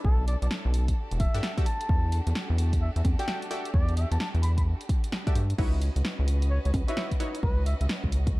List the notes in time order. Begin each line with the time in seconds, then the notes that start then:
Already playing: C#4 D4 E4 A4
0.04 B1 A4, kick
0.27 D5, open hi-hat
0.42 B1 D5, closed hi-hat
0.51 snare
0.65 B1
0.74 open hi-hat
0.88 kick, closed hi-hat
0.97 D4 F#4 G4
1.11 E1, closed hi-hat
1.20 E5, kick, open hi-hat
1.34 G2 F#4 G4 A4 D5 E5, closed hi-hat
1.43 snare
1.58 F#4 G4 A4 D5 E5, kick, closed hi-hat
1.66 A5, cross-stick, open hi-hat
1.81 closed hi-hat
1.89 E2, kick
2.12 open hi-hat
2.27 E2, closed hi-hat
2.35 snare
2.50 E2
2.58 open hi-hat
2.73 kick, closed hi-hat
2.82 E5
2.96 E2 E5, closed hi-hat
3.05 E2, kick, open hi-hat, high conga
3.19 F#4 G4 A4 D5 E5 G5, closed hi-hat
3.28 F#4 G4 A4 D5 E5, snare
3.42 closed hi-hat
3.51 F#4 G4 A4 D5 E5, cross-stick, open hi-hat
3.65 closed hi-hat
3.74 E2 D5, kick
3.89 closed hi-hat
3.97 E5, open hi-hat
4.11 E2 A5, cross-stick, closed hi-hat
4.20 A5, snare
4.34 E2, closed hi-hat
4.43 B5, open hi-hat
4.58 B5, kick, closed hi-hat
4.81 closed hi-hat
4.89 kick, open hi-hat
5.04 closed hi-hat
5.12 snare
5.27 F#4 G4 A4 D5 E5, kick, closed hi-hat
5.35 G2, cross-stick, open hi-hat
5.50 closed hi-hat
5.58 C#2 C#4 D#4 E4 F#4 B4 C#5 D#5, kick, crash
5.82 open hi-hat
5.96 C#2, closed hi-hat
6.05 snare
6.19 C#2
6.28 open hi-hat
6.42 closed hi-hat
6.51 C#5
6.65 C#2 C#5, closed hi-hat
6.74 C#2, kick, open hi-hat, high conga
6.88 D#4 E4 F#4 B4 C#5 E5, closed hi-hat
6.97 D#4 E4 F#4 B4 C#5, snare
7.11 kick, closed hi-hat
7.20 D#4 E4 F#4 B4 C#5, cross-stick, open hi-hat
7.35 closed hi-hat
7.43 C#2 B4, kick
7.66 E5, open hi-hat
7.80 C#2 E5, closed hi-hat
7.89 snare
8.04 C#2, kick
8.12 open hi-hat
8.27 kick, closed hi-hat
8.35 C#5